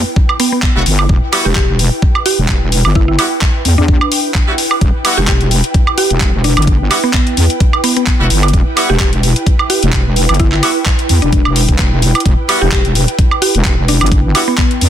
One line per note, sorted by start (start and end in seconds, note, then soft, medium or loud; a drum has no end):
0.00 14.89 E4 medium
0.00 14.89 B4 medium
0.00 14.89 G5 medium
0.16 kick loud
0.29 high woodblock medium
0.40 0.48 B3 medium
0.40 open hi-hat loud
0.52 0.59 B3 medium
0.62 kick loud
0.62 clap loud
0.76 0.84 E1 loud
0.76 0.82 G3 medium
0.76 0.82 B3 medium
0.76 0.82 E4 medium
0.76 0.82 F#4 loud
0.86 1.08 G1 medium
0.86 open hi-hat loud
0.99 high woodblock medium
1.09 1.20 E1 medium
1.09 kick loud
1.33 1.45 G3 medium
1.33 1.45 B3 medium
1.33 1.45 E4 medium
1.33 1.45 F#4 loud
1.33 open hi-hat loud
1.33 high woodblock medium
1.45 1.90 E1 medium
1.45 1.52 G4 medium
1.55 1.64 G4 medium
1.55 kick loud
1.55 clap loud
1.79 open hi-hat loud
2.02 kick loud
2.15 high woodblock medium
2.26 2.46 G4 loud
2.26 open hi-hat loud
2.38 2.83 E1 loud
2.48 kick loud
2.48 clap loud
2.72 open hi-hat loud
2.85 3.17 G1 loud
2.85 high woodblock medium
2.95 3.04 E4 medium
2.95 kick loud
3.08 3.15 E4 medium
3.19 3.26 G3 medium
3.19 3.26 B3 medium
3.19 3.26 E4 medium
3.19 3.26 F#4 loud
3.19 open hi-hat loud
3.19 high woodblock medium
3.41 kick loud
3.41 clap loud
3.65 3.76 E2 loud
3.65 open hi-hat loud
3.78 3.99 E2 medium
3.78 4.43 D4 medium
3.88 kick loud
4.01 high woodblock medium
4.12 open hi-hat loud
4.34 kick loud
4.34 clap loud
4.48 4.54 G3 medium
4.48 4.54 B3 medium
4.48 4.54 E4 medium
4.48 4.54 F#4 loud
4.58 open hi-hat loud
4.71 high woodblock medium
4.81 4.92 E1 medium
4.81 kick loud
4.81 closed hi-hat medium
5.05 5.17 G3 medium
5.05 5.17 B3 medium
5.05 5.17 E4 medium
5.05 5.17 F#4 loud
5.05 open hi-hat loud
5.05 high woodblock medium
5.17 5.62 E1 medium
5.17 5.24 G4 medium
5.27 5.36 G4 medium
5.27 kick loud
5.27 clap loud
5.27 closed hi-hat medium
5.41 closed hi-hat soft
5.51 open hi-hat loud
5.64 closed hi-hat soft
5.74 kick loud
5.74 closed hi-hat medium
5.87 high woodblock medium
5.98 6.18 G4 medium
5.98 open hi-hat loud
6.10 6.55 E1 medium
6.10 closed hi-hat soft
6.20 kick loud
6.20 clap loud
6.20 closed hi-hat medium
6.44 6.64 D4 medium
6.44 open hi-hat loud
6.57 6.89 G1 loud
6.57 closed hi-hat soft
6.57 high woodblock medium
6.62 closed hi-hat medium
6.67 kick loud
6.67 closed hi-hat medium
6.91 6.99 G3 medium
6.91 6.99 B3 medium
6.91 6.99 E4 medium
6.91 6.99 F#4 loud
6.91 open hi-hat loud
6.91 high woodblock medium
7.04 7.10 B3 medium
7.13 7.22 B3 medium
7.13 kick loud
7.13 clap loud
7.13 closed hi-hat medium
7.27 closed hi-hat medium
7.37 7.48 E2 loud
7.37 open hi-hat loud
7.50 closed hi-hat medium
7.60 kick loud
7.60 closed hi-hat medium
7.73 high woodblock medium
7.84 7.92 B3 medium
7.84 open hi-hat loud
7.97 8.03 B3 medium
7.97 closed hi-hat medium
8.07 kick loud
8.07 clap loud
8.07 closed hi-hat medium
8.20 8.29 E1 medium
8.20 8.26 G3 loud
8.20 8.26 B3 medium
8.20 8.26 E4 medium
8.20 8.26 F#4 loud
8.30 8.52 G1 loud
8.30 open hi-hat loud
8.43 closed hi-hat medium
8.43 high woodblock medium
8.48 closed hi-hat medium
8.53 8.64 E1 medium
8.53 kick loud
8.53 closed hi-hat medium
8.77 8.89 G3 medium
8.77 8.89 B3 medium
8.77 8.89 E4 medium
8.77 8.89 F#4 loud
8.77 open hi-hat loud
8.77 high woodblock medium
8.90 9.34 E1 loud
8.90 8.96 G4 medium
9.00 9.08 G4 medium
9.00 kick loud
9.00 clap loud
9.00 closed hi-hat medium
9.13 closed hi-hat medium
9.23 open hi-hat loud
9.36 closed hi-hat medium
9.46 kick loud
9.46 closed hi-hat medium
9.59 high woodblock medium
9.70 9.90 G4 medium
9.70 open hi-hat medium
9.83 10.27 E1 medium
9.83 closed hi-hat medium
9.93 kick loud
9.93 clap loud
9.93 closed hi-hat medium
10.16 open hi-hat loud
10.29 10.61 G1 loud
10.29 closed hi-hat medium
10.29 high woodblock medium
10.34 closed hi-hat medium
10.40 10.48 E4 medium
10.40 kick loud
10.40 closed hi-hat medium
10.52 10.59 E4 medium
10.52 clap soft
10.63 10.71 G3 medium
10.63 10.71 B3 medium
10.63 10.71 E4 medium
10.63 10.71 F#4 loud
10.63 open hi-hat loud
10.63 high woodblock medium
10.86 kick loud
10.86 clap loud
10.86 closed hi-hat medium
10.99 closed hi-hat medium
11.09 11.20 E2 loud
11.09 open hi-hat loud
11.22 11.43 E1 medium
11.22 11.87 D4 medium
11.22 closed hi-hat medium
11.33 kick loud
11.33 closed hi-hat medium
11.45 11.67 E1 medium
11.45 high woodblock medium
11.56 open hi-hat loud
11.69 12.13 E1 loud
11.69 kick medium
11.69 closed hi-hat medium
11.78 kick loud
11.78 clap loud
11.78 closed hi-hat medium
12.02 open hi-hat loud
12.15 closed hi-hat medium
12.15 high woodblock medium
12.20 closed hi-hat medium
12.26 12.36 E1 medium
12.26 kick loud
12.26 closed hi-hat medium
12.49 12.61 G3 medium
12.49 12.61 B3 medium
12.49 12.61 E4 medium
12.49 12.61 F#4 loud
12.49 open hi-hat loud
12.49 high woodblock medium
12.62 13.06 E1 loud
12.62 12.68 G4 medium
12.72 12.80 G4 medium
12.72 kick loud
12.72 clap loud
12.72 closed hi-hat medium
12.85 closed hi-hat medium
12.95 open hi-hat loud
13.08 closed hi-hat medium
13.19 kick loud
13.19 closed hi-hat medium
13.31 high woodblock medium
13.42 13.62 G4 medium
13.42 open hi-hat loud
13.55 13.99 E1 medium
13.55 closed hi-hat medium
13.65 kick loud
13.65 clap loud
13.65 closed hi-hat medium
13.88 14.09 D4 medium
13.88 open hi-hat loud
14.01 14.33 G1 loud
14.01 closed hi-hat soft
14.01 high woodblock medium
14.06 closed hi-hat medium
14.12 kick loud
14.12 closed hi-hat medium
14.35 14.43 G3 medium
14.35 14.43 B3 medium
14.35 14.43 E4 medium
14.35 14.43 F#4 loud
14.35 open hi-hat loud
14.35 high woodblock medium
14.48 14.54 B3 medium
14.58 14.66 B3 medium
14.58 kick loud
14.58 clap loud
14.58 closed hi-hat medium
14.71 closed hi-hat medium
14.81 14.89 E2 loud
14.81 open hi-hat loud